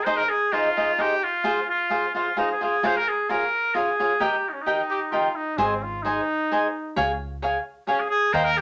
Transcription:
0.04 D#4 G#4 C5 D#5
0.17 A#4
0.29 G#4
0.52 D#4 F4 G#4 C5 D#5
0.77 D#4 G#4 C5 D#5
0.98 D#4 G4 G#4 C5 D#5
1.23 F4
1.44 F4 G#4 C5 F5
1.69 F4
1.90 F4 G#4 C5 F5
2.15 F4 G#4 C5 F5
2.37 D#4 F4 G#4 C5 F5
2.51 G#4
2.61 F4 G#4 C5 F5
2.83 F4 G#4 C5 C#5 F5
2.97 A#4
3.08 G#4
3.29 F4 G#4 A#4 C#5 F5
3.75 F4 G#4 C#5 F5
4.00 F4 G#4 C#5 F5
4.20 G4 A#4 D#5 G5
4.49 D#4
4.53 C#4
4.61 D#4
4.66 G4 A#4 D#5 G5
4.90 G4
5.12 F4 G4 A#4 D#5 G5
5.36 D#4
5.58 G#1 C4 G#4 C5 D#5 G#5
5.83 F4
6.02 D#4 G#4 C5 D#5 G#5
6.52 G#4 C5 D#5 G#5
6.96 C#2 G#4 C#5 F5 G#5
7.42 G#4 C#5 F5 G#5
7.87 C#4 G#4 C#5 F5 G#5
8.00 G#4
8.10 G#4
8.33 D#2 A#4 C5 D#5 F5 G5
8.44 A#4
8.58 G4

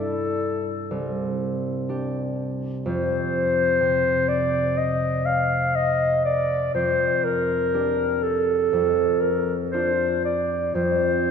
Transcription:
Already playing: G2 D4 E4 A4
0.91 C2
1.89 D4 G4
2.86 F2 C5
3.81 C3
4.29 D5
4.78 D#5
5.26 F5
5.76 D#5
6.25 D5
6.75 F2 C5
7.24 A#4
7.74 D4 G4
8.23 A4
8.73 F2
9.21 A#4
9.71 D4 F4 C5
10.25 D5
10.75 F2 C5

